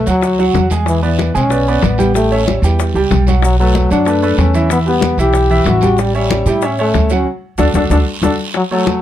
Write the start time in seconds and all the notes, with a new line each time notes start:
0.06 D2 F#3 F#4 F#5, high conga, short guiro, maracas
0.21 high bongo, high conga, long guiro, maracas
0.39 F#3 F#4 F#5, high bongo, high conga, maracas
0.54 E2, high bongo, low bongo, high conga, short guiro, maracas
0.70 G#3 G#4 G#5, high bongo, high conga, short guiro, maracas
0.86 E3, high bongo, high conga, long guiro, maracas
1.02 E3 B3 B4 D5, high conga, maracas
1.18 high bongo, high conga, short guiro, maracas
1.34 B1 G#3 C#4 G#4 G#5, high conga, short guiro, maracas
1.50 B3 B4 D5, high bongo, high conga, long guiro, maracas
1.68 B3 B4 D5, high conga, maracas
1.82 A1 B3, high bongo, low bongo, high conga, short guiro, maracas
1.98 G3 G4 G5, high conga, short guiro, maracas
2.14 G3 A3 G4 G5, high bongo, high conga, long guiro, maracas
2.31 C#4 C#5 E5, high bongo, high conga, maracas
2.46 G3, high bongo, high conga, short guiro, maracas
2.62 E2 E3 G3 G4 G5, high conga, short guiro, maracas
2.79 high bongo, high conga, long guiro, maracas
2.94 C#2 G3 G4 G5, high bongo, high conga, maracas
3.11 B1, high bongo, low bongo, high conga, short guiro, maracas
3.27 F#3 F#4 F#5, high bongo, high conga, short guiro, maracas
3.43 F#3, high bongo, high conga, long guiro, maracas
3.59 F#3 A3 A4 B4, high conga, maracas
3.75 high bongo, high conga, short guiro, maracas
3.90 F#2 F#3 D4 F#4 F#5, high conga, short guiro, maracas
4.05 A3 A4 B4, high bongo, high conga, long guiro, maracas
4.23 A3 A4 B4, high conga, maracas
4.38 E2 C#4, high bongo, low bongo, high conga, short guiro, maracas
4.54 E3 E4 E5, short guiro, maracas
4.69 E3 B3 E4 E5, high bongo, high conga, long guiro, maracas
4.86 G3 B3 G4 B4, high bongo, high conga, maracas
5.01 high bongo, high conga, short guiro, maracas
5.17 B1 E3 E4 G4 E5, high conga, short guiro, maracas
5.33 high bongo, high conga, long guiro, maracas
5.50 E3 E4 E5, high bongo, high conga, maracas
5.65 A1 F#4, high bongo, low bongo, high conga, short guiro, maracas
5.81 G3 G4 G5, high bongo, high conga, short guiro, maracas
5.97 G3, high bongo, high conga, long guiro, maracas
6.14 G3 C#4 C#5 E5, high conga, maracas
6.29 high bongo, high conga, short guiro, maracas
6.45 A2 G3 E4 G4 G5, high conga, short guiro, maracas
6.62 C#4 C#5 E5, high bongo, high conga, long guiro, maracas
6.78 A3 C#4 C#5 E5, high conga, maracas
6.94 D2, high bongo, low bongo, high conga, short guiro, maracas
7.09 F#3 F#4 F#5, short guiro, maracas
7.14 C#4
7.58 D2 D4 F#4 A4, high bongo, high conga, long guiro, maracas
7.74 D2 D4 F#4 A4, high bongo, high conga, long guiro, maracas
7.90 D2 D4 F#4 A4, high bongo, high conga, long guiro, maracas
8.22 D2 D4 F#4 A4, high bongo, high conga, long guiro, maracas
8.54 F#3, high bongo, high conga, long guiro
8.71 F#3 A3 A4 C#5, high conga
8.86 high bongo, high conga, short guiro